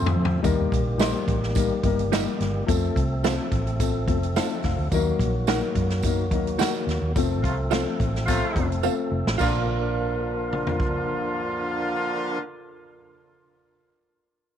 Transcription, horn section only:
7.43 7.55 C3 medium
7.43 7.55 A3 medium
7.43 7.55 F4 medium
8.26 8.66 C3 medium
8.26 8.66 A3 medium
8.26 8.66 F4 loud
9.38 12.38 D3 medium
9.38 12.38 A#3 medium
9.38 12.38 F4 loud

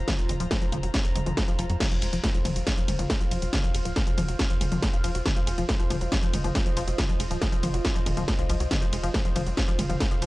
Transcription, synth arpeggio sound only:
0.08 0.12 F3 medium
0.19 0.21 D#3 medium
0.29 0.33 G#3 medium
0.40 0.46 F3 loud
0.51 0.57 F3 medium
0.62 0.66 F3 loud
0.72 0.79 F3 loud
0.83 0.86 F#3 medium
0.94 0.98 F3 medium
1.05 1.07 D#3 medium
1.16 1.20 G#3 medium
1.26 1.33 F3 loud
1.37 1.43 F3 medium
1.48 1.52 F3 loud
1.59 1.65 F3 loud
1.70 1.72 F#3 medium
1.80 1.85 F3 medium
1.91 1.95 F3 loud
2.02 2.06 G#3 medium
2.13 2.19 F3 loud
2.23 2.30 F3 medium
2.34 2.38 F3 loud
2.45 2.51 F3 loud
2.56 2.58 F#3 medium
2.67 2.71 F3 medium
2.77 2.82 F3 loud
2.88 2.92 G#3 medium
2.99 3.05 F3 loud
3.10 3.16 F3 medium
3.21 3.25 F3 loud
3.31 3.38 F3 loud
3.42 3.45 F#3 medium
3.53 3.57 F3 medium
3.64 3.68 F3 loud
3.75 3.79 G#3 medium
3.85 3.92 F3 loud
3.96 4.02 F3 medium
4.07 4.11 F3 loud
4.18 4.24 F3 loud
4.28 4.31 F#3 medium
4.39 4.43 F3 medium
4.50 4.54 F3 loud
4.61 4.65 G#3 medium
4.72 4.78 F3 loud
4.82 4.89 F3 medium
4.93 4.97 F3 loud
5.04 5.10 F3 loud
5.15 5.17 F#3 medium
5.26 5.30 F3 medium
5.36 5.41 F3 loud
5.47 5.51 G#3 medium
5.58 5.64 F3 loud
5.69 5.75 F3 medium
5.80 5.84 F3 loud
5.90 5.97 F3 loud
6.01 6.04 F#3 medium
6.12 6.16 F3 medium
6.23 6.27 F3 loud
6.33 6.38 G#3 medium
6.44 6.50 F3 loud
6.55 6.61 F3 medium
6.66 6.70 F3 loud
6.77 6.83 F3 loud
6.88 6.90 F#3 medium
6.98 7.02 F3 medium
7.09 7.13 F3 loud
7.20 7.24 G#3 medium
7.31 7.37 F3 loud
7.41 7.48 F3 medium
7.52 7.56 F3 loud
7.63 7.69 F3 loud
7.74 7.76 F#3 medium
7.84 7.89 F3 medium
7.95 7.99 F3 loud
8.06 8.10 G#3 medium
8.17 8.23 F3 loud
8.28 8.34 F3 medium
8.39 8.43 F3 loud
8.49 8.56 F3 loud
8.60 8.63 F#3 medium
8.71 8.75 F3 medium
8.82 8.86 F3 loud
8.93 8.97 G#3 medium
9.03 9.10 F3 loud
9.14 9.20 F3 medium
9.25 9.29 F3 loud
9.36 9.42 F3 loud
9.46 9.49 F#3 medium
9.57 9.61 F3 medium
9.68 9.72 F3 loud
9.79 9.83 G#3 medium
9.89 9.96 F3 loud
10.00 10.07 F3 medium
10.11 10.15 F3 loud
10.22 10.26 F3 loud

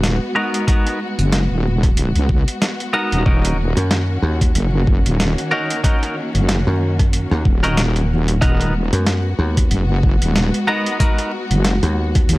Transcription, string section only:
0.00 3.22 G#3 medium
0.00 3.22 B3 medium
0.00 8.38 F#4 medium
3.26 8.38 D#3 medium
3.26 8.38 A#3 medium
3.26 8.38 C#4 medium
8.42 12.38 G#3 medium
8.42 12.38 B3 medium
8.42 12.38 F#4 medium

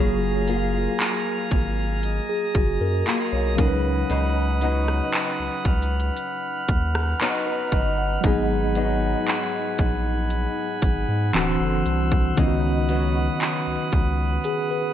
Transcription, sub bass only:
0.00 0.88 F#1 loud
1.51 2.20 G#1 medium
2.55 2.78 F#1 loud
2.81 3.04 F#2 medium
3.32 3.60 B1 medium
3.58 4.04 C#2 medium
4.10 5.01 C#2 loud
5.39 5.50 C#2 soft
5.65 6.11 C#2 medium
6.69 7.14 D#2 medium
7.72 8.18 G1 loud
8.24 9.15 G#1 loud
9.79 10.48 A#1 medium
10.82 11.05 G#1 loud
11.08 11.31 G#2 loud
11.34 11.57 D1 loud
11.60 11.83 F#1 medium
11.86 12.32 C2 loud
12.37 13.29 C#2 loud
13.67 13.77 C#2 medium
13.93 14.38 C#2 loud

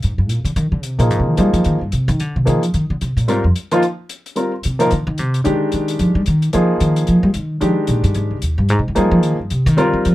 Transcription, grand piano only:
0.98 1.35 F3 medium
0.98 1.35 A#3 soft
0.98 1.35 D#4 soft
0.98 1.35 G#4 medium
1.37 1.78 F3 medium
1.37 1.78 A#3 soft
1.37 1.78 D#4 medium
1.37 1.78 G#4 medium
2.45 2.60 F3 medium
2.45 2.61 A#3 medium
2.45 2.61 D#4 soft
2.45 2.61 G#4 medium
3.28 3.42 G3 medium
3.28 3.43 C4 medium
3.28 3.43 F4 soft
3.28 3.43 A#4 medium
3.72 3.81 F3 medium
3.72 3.81 A#3 medium
3.72 3.81 D#4 medium
3.72 3.81 F4 medium
4.36 4.51 G3 soft
4.36 4.51 C4 soft
4.36 4.51 F4 soft
4.36 4.51 A#4 medium
4.79 4.89 F3 medium
4.79 4.89 A#3 medium
4.79 4.89 D#4 medium
4.79 4.90 A#4 medium
5.44 6.19 D#3 medium
5.44 6.19 G#3 medium
5.44 6.19 D4 medium
5.44 6.20 G4 medium
6.53 7.27 F3 medium
6.53 7.28 A#3 medium
6.53 7.28 D#4 medium
6.53 7.28 G#4 medium
7.61 8.35 D#3 medium
7.61 8.35 G#3 medium
7.61 8.36 D4 medium
7.61 8.36 G4 medium
8.95 9.35 F3 medium
8.95 9.36 A#3 medium
8.95 9.36 D#4 medium
8.95 9.36 G#4 medium
9.77 10.15 G3 medium
9.77 10.15 C4 medium
9.77 10.15 F4 medium
9.77 10.15 A#4 medium

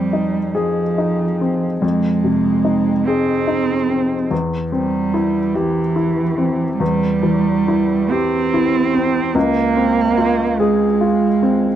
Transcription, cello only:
0.00 0.58 G3 soft
0.56 1.82 F3 soft
1.83 3.08 G#3 medium
3.07 4.31 C4 medium
4.72 5.57 G3 medium
5.55 6.78 E3 medium
6.78 8.11 G3 medium
8.10 9.36 C4 medium
9.34 10.60 A#3 medium
10.59 11.76 G#3 medium

